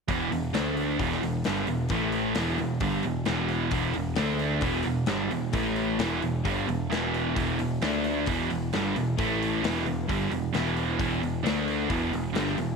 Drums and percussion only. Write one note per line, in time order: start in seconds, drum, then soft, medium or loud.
0.08 kick loud
0.08 open hi-hat medium
0.32 open hi-hat medium
0.54 snare loud
0.54 open hi-hat medium
0.77 open hi-hat medium
0.99 kick medium
0.99 open hi-hat medium
1.12 snare soft
1.23 open hi-hat medium
1.44 snare medium
1.44 open hi-hat medium
1.67 open hi-hat soft
1.88 kick loud
1.88 open hi-hat medium
2.12 open hi-hat medium
2.35 snare loud
2.35 open hi-hat medium
2.58 open hi-hat medium
2.80 kick loud
2.80 open hi-hat medium
3.03 open hi-hat medium
3.25 snare loud
3.25 open hi-hat medium
3.48 open hi-hat soft
3.71 kick loud
3.71 open hi-hat medium
3.93 open hi-hat medium
4.15 snare loud
4.15 open hi-hat medium
4.39 open hi-hat medium
4.61 kick loud
4.61 open hi-hat medium
4.83 open hi-hat medium
5.06 snare medium
5.06 open hi-hat medium
5.31 open hi-hat medium
5.53 kick loud
5.53 open hi-hat medium
5.76 open hi-hat medium
5.99 snare loud
5.99 open hi-hat medium
6.22 open hi-hat medium
6.45 kick loud
6.45 open hi-hat medium
6.69 open hi-hat soft
6.91 snare medium
6.91 open hi-hat medium
7.14 open hi-hat soft
7.36 kick medium
7.36 open hi-hat medium
7.59 open hi-hat medium
7.81 snare loud
7.81 open hi-hat medium
8.04 open hi-hat medium
8.26 kick loud
8.26 open hi-hat medium
8.50 open hi-hat medium
8.72 snare medium
8.72 open hi-hat medium
8.96 open hi-hat medium
9.18 kick loud
9.18 open hi-hat medium
9.42 open hi-hat medium
9.64 snare loud
9.64 open hi-hat medium
9.86 open hi-hat medium
10.09 kick loud
10.09 open hi-hat medium
10.31 open hi-hat soft
10.54 snare medium
10.54 open hi-hat medium
10.66 snare soft
10.76 open hi-hat soft
10.99 kick loud
10.99 open hi-hat medium
11.23 open hi-hat medium
11.46 snare loud
11.46 open hi-hat medium
11.68 open hi-hat soft
11.90 kick loud
11.90 open hi-hat medium
12.13 open hi-hat medium
12.35 snare medium
12.35 open hi-hat medium
12.47 snare soft
12.58 open hi-hat medium